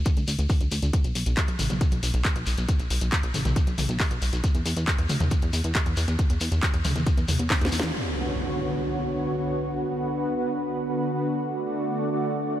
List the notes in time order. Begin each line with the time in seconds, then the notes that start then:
0.05 kick, closed hi-hat, shekere
0.17 D2, closed hi-hat, shekere
0.28 D2, open hi-hat, shekere
0.39 D2, closed hi-hat, shekere
0.49 kick, open hi-hat, shekere
0.60 D2, closed hi-hat, shekere
0.71 D2, open hi-hat, shekere
0.82 D2, closed hi-hat, shekere
0.93 kick, closed hi-hat, shekere
1.04 B1, closed hi-hat, shekere
1.15 B1, open hi-hat, shekere
1.26 B1, closed hi-hat, shekere
1.37 kick, clap, closed hi-hat, shekere
1.48 B1, closed hi-hat, shekere
1.59 A1, open hi-hat, mid tom, shekere
1.70 B1, closed hi-hat, mid tom, shekere
1.81 kick, closed hi-hat, shekere
1.91 B1, closed hi-hat, shekere
2.03 B1, open hi-hat, shekere
2.13 B1, closed hi-hat, shekere
2.25 kick, clap, closed hi-hat, shekere
2.36 B1, closed hi-hat, shekere
2.46 B1, open hi-hat, shekere
2.57 B1, closed hi-hat, shekere
2.68 kick, closed hi-hat, shekere
2.79 B1, closed hi-hat, shekere
2.90 B1, open hi-hat, shekere
3.01 B1, closed hi-hat, shekere
3.12 kick, clap, closed hi-hat, shekere
3.23 B1, closed hi-hat, shekere
3.34 A1, open hi-hat, mid tom, shekere
3.45 B1, closed hi-hat, mid tom, shekere
3.56 kick, closed hi-hat, shekere
3.67 B1, closed hi-hat, shekere
3.78 B1, open hi-hat, mid tom, shekere
3.89 B1, closed hi-hat, shekere
4.00 kick, clap, open hi-hat, shekere
4.11 B1, closed hi-hat, shekere
4.22 B1, open hi-hat, shekere
4.33 B1, closed hi-hat, shekere
4.44 kick, closed hi-hat, shekere
4.55 E2, closed hi-hat, shekere
4.66 E2, open hi-hat, shekere
4.77 E2, closed hi-hat, shekere
4.88 kick, clap, closed hi-hat, shekere
4.98 E2, closed hi-hat, shekere
5.09 D2, open hi-hat, mid tom, shekere
5.20 E2, closed hi-hat, mid tom, shekere
5.31 kick, closed hi-hat, shekere
5.42 E2, closed hi-hat, shekere
5.53 E2, open hi-hat, shekere
5.64 E2, closed hi-hat, shekere
5.75 kick, clap, closed hi-hat, shekere
5.86 E2, closed hi-hat, shekere
5.97 E2, open hi-hat, shekere
6.08 E2, closed hi-hat, shekere
6.19 kick, closed hi-hat, shekere
6.30 E2, closed hi-hat, shekere
6.40 E2, open hi-hat, shekere
6.52 E2, closed hi-hat, shekere
6.63 kick, clap, closed hi-hat, shekere
6.73 E2, closed hi-hat, shekere
6.85 D2, open hi-hat, mid tom, shekere
6.96 E2, closed hi-hat, mid tom, shekere
7.06 kick, closed hi-hat, shekere
7.17 E2, closed hi-hat, shekere
7.28 E2, open hi-hat, mid tom, shekere
7.39 E2, closed hi-hat, shekere
7.50 kick, snare, clap, open hi-hat, shekere
7.61 E2, snare, closed hi-hat, shekere
7.72 E2, open hi-hat, shekere
7.80 E2, snare, closed hi-hat, shekere
7.94 impact